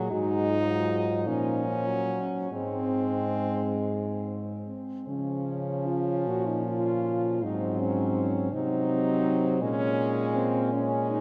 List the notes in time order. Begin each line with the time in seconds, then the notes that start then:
Already playing: F#3 G#4
0.10 G#2 G#3 D#4 F#4
0.49 F4
0.68 F#3
1.25 A#2 F3 C#4 D#4
1.67 C#4
1.86 F#3
2.51 G#2 G#3 C4
4.68 C4
5.07 C#3 F3 C#4
5.87 F4
6.27 A#2 F#4
6.47 D#4
6.66 F4
7.41 G#2 F#3 C4 D#4
7.80 C#4
8.51 C3 F#3 C4 D#4
9.61 A#2 G#3 C#4
10.35 C4
10.73 G#3 C#4
11.10 D#4